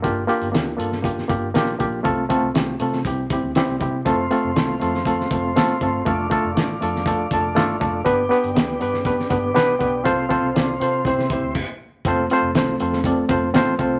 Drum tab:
CC |----------------|----------------|----------------|----------------|
HH |x-xxx-x-x-x-xxx-|x-x-x-x-x-x-xxx-|x-x-x-x-x-x-xxx-|x-x-x-x-x-x-x-x-|
SD |----o--o-o--o---|----o--o----o---|----o--o-o--o---|----o--o----o---|
BD |o-------o-o---o-|o-o-----o-o---o-|o-------o-o---o-|o-o-----o-o---o-|

CC |----------------|------------x---|----------------|
HH |x-xxx-x-x-x-x-x-|x-x-x-x-x-x-----|x-x-x-x-x-x-x-x-|
SD |----o--o-o--o---|----o----o------|----o--o----o---|
BD |o-------o-o---o-|o-o-----o-o-o---|o-------o-o---o-|